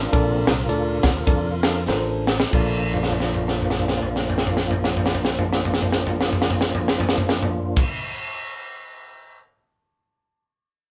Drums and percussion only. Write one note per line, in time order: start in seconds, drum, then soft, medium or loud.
0.13 kick loud
0.13 ride medium
0.47 snare loud
0.47 ride medium
0.69 ride medium
1.03 kick medium
1.03 snare loud
1.03 ride medium
1.27 kick loud
1.27 ride medium
1.63 snare loud
1.63 ride medium
1.89 snare medium
2.27 snare loud
2.40 snare loud
2.53 kick loud
2.53 crash medium
2.94 floor tom medium
3.03 snare medium
3.12 floor tom soft
3.20 snare soft
3.35 floor tom medium
3.48 snare medium
3.62 floor tom medium
3.70 snare medium
3.79 floor tom medium
3.88 snare medium
4.02 floor tom medium
4.16 snare medium
4.30 floor tom medium
4.38 snare medium
4.47 floor tom medium
4.57 snare medium
4.71 floor tom medium
4.84 snare medium
4.97 floor tom medium
5.06 snare medium
5.15 floor tom medium
5.25 snare medium
5.39 floor tom medium
5.53 snare medium
5.65 floor tom medium
5.74 snare medium
5.83 floor tom medium
5.92 snare medium
6.07 floor tom medium
6.21 snare medium
6.33 floor tom medium
6.42 snare medium
6.50 floor tom medium
6.61 snare medium
6.75 floor tom medium
6.88 snare medium
7.00 floor tom medium
7.09 snare loud
7.18 floor tom loud
7.29 snare medium
7.42 floor tom loud
7.76 kick loud
7.76 crash loud